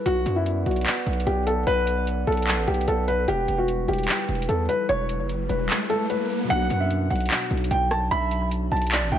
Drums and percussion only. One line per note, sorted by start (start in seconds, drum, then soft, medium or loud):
0.06 closed hi-hat medium
0.26 closed hi-hat medium
0.46 closed hi-hat medium
0.66 closed hi-hat soft
0.71 closed hi-hat soft
0.76 closed hi-hat medium
0.81 closed hi-hat medium
0.86 clap loud
0.86 closed hi-hat medium
1.07 closed hi-hat soft
1.13 closed hi-hat medium
1.20 closed hi-hat medium
1.27 closed hi-hat medium
1.47 closed hi-hat medium
1.67 closed hi-hat medium
1.87 closed hi-hat medium
2.07 closed hi-hat medium
2.27 closed hi-hat soft
2.32 closed hi-hat soft
2.37 closed hi-hat medium
2.42 closed hi-hat medium
2.47 clap loud
2.47 closed hi-hat medium
2.68 closed hi-hat soft
2.74 closed hi-hat medium
2.81 closed hi-hat medium
2.88 closed hi-hat medium
3.08 closed hi-hat medium
3.28 closed hi-hat medium
3.48 closed hi-hat medium
3.68 closed hi-hat medium
3.88 closed hi-hat soft
3.93 closed hi-hat soft
3.98 closed hi-hat medium
4.03 closed hi-hat medium
4.08 clap loud
4.08 closed hi-hat medium
4.29 closed hi-hat soft
4.35 closed hi-hat medium
4.42 closed hi-hat medium
4.49 closed hi-hat medium
4.69 closed hi-hat medium
4.89 closed hi-hat medium
5.09 closed hi-hat medium
5.29 closed hi-hat medium
5.49 closed hi-hat medium
5.70 clap loud
5.70 closed hi-hat medium
5.90 closed hi-hat medium
6.10 closed hi-hat medium
6.30 open hi-hat medium
6.50 closed hi-hat medium
6.70 closed hi-hat medium
6.90 closed hi-hat medium
7.11 closed hi-hat soft
7.16 closed hi-hat soft
7.21 closed hi-hat medium
7.26 closed hi-hat medium
7.31 clap loud
7.31 closed hi-hat medium
7.51 closed hi-hat soft
7.57 closed hi-hat medium
7.64 closed hi-hat medium
7.71 closed hi-hat medium
7.91 cross-stick loud
7.91 closed hi-hat medium
8.11 closed hi-hat medium
8.31 closed hi-hat medium
8.51 closed hi-hat medium
8.72 closed hi-hat soft
8.77 closed hi-hat soft
8.82 closed hi-hat medium
8.87 closed hi-hat medium
8.92 clap loud
8.92 closed hi-hat medium
9.12 closed hi-hat soft